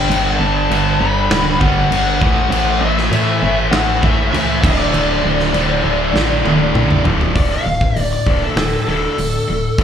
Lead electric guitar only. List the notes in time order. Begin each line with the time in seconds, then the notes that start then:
Already playing: G5
0.23 F#5
0.39 A5
1.00 B5
1.60 F#5
2.51 F#5
2.79 E5
3.71 F#5
4.02 E5
4.31 E5
4.63 D5
7.37 D5
7.52 F5
8.13 D5
8.43 A4
8.89 A4